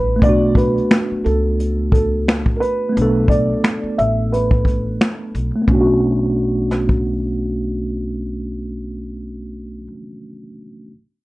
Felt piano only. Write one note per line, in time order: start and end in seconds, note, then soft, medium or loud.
0.00 0.20 B4 medium
0.23 0.57 D5 loud
0.57 1.27 B4 medium
1.24 1.91 A4 medium
1.92 2.56 A4 medium
2.56 2.61 A#4 medium
2.60 3.25 B4 loud
3.29 3.99 D5 loud
3.98 4.33 E5 medium
4.32 5.30 B4 medium
5.71 9.88 F#4 medium